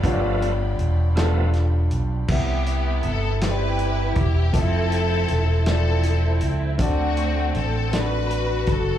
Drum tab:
CC |------|x-----|------|------|
HH |xxxxxx|-xxxxx|xxxxxx|xxxxxx|
SD |---oo-|---o--|---oo-|---o--|
BD |o-----|o----o|o-----|o----o|